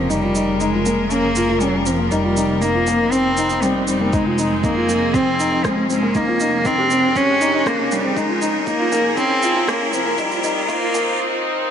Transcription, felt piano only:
0.10 D#4
0.23 F4
0.35 D#4
0.61 D#4
0.73 F4
0.86 A#3
1.11 C#4
1.36 F4
1.49 F4
1.62 C#4
1.74 C#4
1.86 C4
1.99 A#3
2.12 D#4
2.24 F4
2.37 D#4
2.62 D#4
2.74 F4
2.88 A#3
3.12 C4
3.38 D#4
3.51 D#4
3.63 C4
3.76 C4
3.88 C4
4.01 A#3
4.13 D#4
4.26 F4
4.39 D#4
4.64 D#4
4.76 F4
4.89 A#3
5.14 C4
5.39 D#4
5.52 D#4
5.65 C4
5.77 C4
5.90 C4
6.03 A#3
6.16 D#4
6.28 F4
6.41 D#4
6.66 D#4
6.78 G4
6.91 C4
7.16 C#4
7.41 D#4
7.54 D#4
7.66 C#4
7.79 C#4
7.92 C#4
8.04 C4
8.16 D#4
8.29 F4
8.42 D#4
8.67 D#4
8.80 F4
8.92 A#3
9.18 C#4
9.43 F4
9.56 F4
9.68 C#4
9.81 C#4
9.93 C4
10.06 A#3
10.19 D#4
10.31 F4
10.43 D#4
10.69 D#4
10.82 F4
10.95 A#3

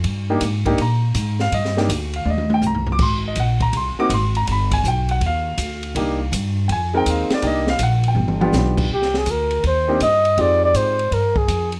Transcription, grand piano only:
0.30 A#3 D4 D#4 G4
0.66 A#3 D4 D#4 G4
0.82 A#5
1.41 F5
1.54 D#5
1.77 A#3 D4 D#4 G4
2.16 F5
2.26 D5
2.30 D#5
2.54 G5
2.67 A#5
2.92 D6
3.02 C6
3.28 D#5
3.40 F#5
3.62 A#5
3.77 C6
3.99 A#3 C4 D#4 F#4 D6
4.14 C6
4.37 A#5
4.48 A#5
4.52 B5
4.74 G#5
4.88 G5
5.11 F#5
5.26 F5
5.96 A#3 D4 D#4 G4
6.68 G5
6.72 G#5
6.94 G#3 C4 D#4 A#4 G5
7.10 F5
7.34 D5
7.43 A#3 D4 D#4 G4
7.47 D#5
7.70 F5
7.83 F#5
8.08 G5
8.41 B3 D4 F4 G4
9.88 A#3 C4 D4 D#4 G4
10.38 G#3 C4 D#4 F4 G4

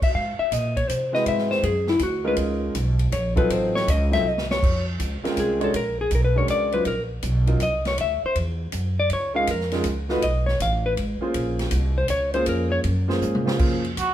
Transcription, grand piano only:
1.12 G#3 C4 E4 F#4 B4
2.24 G#3 C#4 D#4 F4 A#4
3.36 F#3 C4 D#4 F4 A4
4.11 F#3 C4 D#4 F4 A4
5.23 G#3 C4 C#4 F4 A#4
5.60 G#3 C#4 D4 F#4 C#5
6.35 G#3 C#4 D4 F#4 A#4
6.73 F#3 C#4 D#4 F4 C5
7.47 F#3 C#4 D#4 F4 A#4
9.34 G#3 C#4 D#4 F4 A#4
9.72 G#3 C#4 D#4 F4 A#4
10.09 A3 D#4 F4 F#4 B4
11.21 A#3 C#4 F4 G#4 C5
12.34 A#3 C#4 F4 G#4 C5
13.08 A#3 C#4 F4 G#4 C5
13.45 A#3 C#4 F4 G#4 C5
13.58 A#3 C#4 F4 G#4 C5

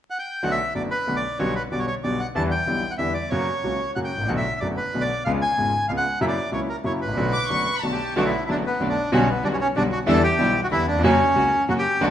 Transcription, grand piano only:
0.43 B1 B2 D3 A3 B3 F#4
0.75 F#1 F#2 D3 A3 B3 F#4
1.07 B1 B2 D3 A3 B3 F#4
1.39 B1 B2 D3 G3 B3 F#4
1.72 B1 B2 D3 G3 B3 F#4
2.04 B1 B2 D3 G3 B3 F#4
2.35 E2 D3 E3 G3 B3 E4
2.67 B1 B2 D3 G3 B3 E4
2.99 E2 D3 E3 G3 B3 E4
3.32 F#2 C#3 F#3 A#3 F#4
3.64 C#2 C#3 F#3 A#3 F#4
3.96 F#2 C#3 F#3 A#3 F#4
4.17 G#1
4.21 A1
4.26 A#1 B1 B2 D3 A3 B3 F#4
4.62 F#1 F#2 D3 A3 B3 F#4
4.94 B1 B2 D3 A3 B3 F#4
5.26 C#2 C#3 G#3 B3 F4
5.58 G#1 G#2 C#3 G#3 B3 F4
5.89 C#2 C#3 G#3 B3 F4
6.21 F#2 C#3 F#3 A#3 E4
6.52 C#2 C#3 F#3 A#3 E4
6.84 F#2 C#3 F#3 A#3 E4
7.05 G#1 A1
7.14 A#1 B1 B2 D3 A3 B3 F#4
7.50 F#1 F#2 D3 A3 B3 F#4
7.83 B1 B2 D3 A3 B3 F#4
8.16 B1 B2 D3 A3 B3 F#4
8.48 F#1 F#2 D3 A3 B3 F#4
8.80 B1 B2 D3 A3 B3 F#4
9.12 B1 B2 D3 G3 B3 F#4
9.44 B1 B2 D3 G3 B3 F#4
9.75 B1 B2 D3 G3 B3 F#4
10.06 E2 D3 E3 G3 B3 E4
10.39 B1 B2 D3 G3 B3 E4
10.71 E2 D3 E3 G3 B3 E4
10.92 D#2 E2
10.99 F2
11.04 F#2 C#3 F#3 A#3 F#4
11.36 C#2 C#3 F#3 A#3 F#4
11.68 F#2 C#3 F#3 A#3 F#4
12.01 B1 B2 D3 A3 B3 F#4

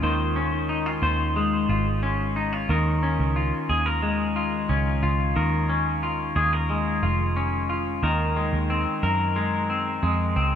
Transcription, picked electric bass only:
0.02 D#2
1.02 D#2
1.69 G#1
2.69 D#2
3.19 C#2
3.70 D#2
4.70 C#2
5.03 C#2
5.36 D#2
6.36 D#2
7.03 F1
8.03 D#2
8.53 D#2
9.03 F#2
10.03 F2
10.36 C#2

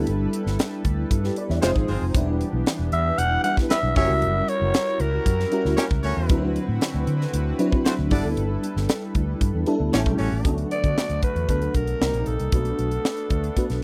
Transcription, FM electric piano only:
Already playing: G3 B3 D4 E4 A4
1.24 G4 B4
1.37 B4 D5
1.50 C#5 E5
1.62 G#3 C4 D#4 F4 C5
2.14 G3 B3 D4 E4 B4
3.44 G3 B3 D4 E4 B4
3.95 G3 C#4 E4 F#4 G4
4.03 A#4
5.51 G3 C#4 E4 F#4 A#4
6.29 F#3 C4 D4 E4 B4
7.59 F#3 C4 D4 E4 B4
8.11 G3 B3 D4 E4 A4
9.66 G3 B3 D4 E4 A4
9.92 G3 A3 C#4 E4 G#4
9.99 A4
10.44 F#3 A3 B3 D4 A4
11.48 F#3 A3 B3 D4 A4
12.01 G3 A#3 C4 D#4 A#4
12.52 A3 B3 D4 F#4 B4
13.56 A3 B3 D4 F#4 B4

